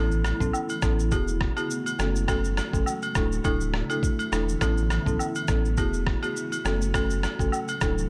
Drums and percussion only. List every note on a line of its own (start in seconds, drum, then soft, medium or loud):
0.11 shaker medium
0.24 cross-stick loud
0.24 high agogo medium
0.24 shaker soft
0.41 kick medium
0.41 shaker soft
0.53 low woodblock medium
0.53 shaker medium
0.69 high agogo medium
0.69 shaker medium
0.82 kick loud
0.82 cross-stick loud
0.82 shaker medium
0.99 shaker soft
1.11 kick medium
1.11 high agogo medium
1.11 shaker medium
1.28 shaker medium
1.41 kick medium
1.41 cross-stick medium
1.57 high agogo medium
1.57 shaker soft
1.70 shaker medium
1.86 high agogo medium
1.86 shaker medium
1.99 cross-stick medium
1.99 shaker medium
2.16 shaker medium
2.28 kick loud
2.28 cross-stick medium
2.28 high agogo medium
2.28 shaker medium
2.44 shaker medium
2.57 cross-stick medium
2.57 high agogo medium
2.57 shaker medium
2.73 kick medium
2.73 shaker medium
2.86 low woodblock medium
2.86 shaker medium
3.02 high agogo medium
3.02 shaker medium
3.15 kick loud
3.15 cross-stick loud
3.15 shaker medium
3.32 shaker soft
3.44 kick medium
3.44 high agogo medium
3.44 shaker medium
3.61 shaker medium
3.74 cross-stick medium
3.90 high agogo medium
3.90 shaker soft
4.03 kick medium
4.03 shaker medium
4.19 high agogo medium
4.19 shaker medium
4.32 cross-stick medium
4.32 shaker medium
4.49 shaker medium
4.61 kick loud
4.61 cross-stick medium
4.61 high agogo medium
4.61 shaker medium
4.77 shaker medium
4.90 cross-stick loud
4.90 high agogo medium
4.90 shaker medium
5.06 kick medium
5.06 shaker soft
5.19 low woodblock medium
5.19 shaker medium
5.35 high agogo medium
5.35 shaker medium
5.48 kick loud
5.48 cross-stick loud
5.48 shaker medium
5.65 shaker medium
5.77 kick medium
5.77 high agogo medium
5.77 shaker medium
5.93 shaker medium
6.07 kick medium
6.07 cross-stick medium
6.23 high agogo medium
6.23 shaker soft
6.36 shaker medium
6.52 high agogo medium
6.52 shaker medium
6.65 cross-stick medium
6.65 shaker medium
6.82 shaker medium
6.94 kick loud
6.94 cross-stick medium
6.94 high agogo medium
6.94 shaker medium
7.10 shaker medium
7.23 cross-stick loud
7.23 high agogo medium
7.23 shaker medium
7.39 kick medium
7.39 shaker medium
7.52 low woodblock medium
7.52 shaker medium
7.68 high agogo medium
7.68 shaker medium
7.81 kick loud
7.81 cross-stick medium
7.81 shaker medium
7.98 shaker medium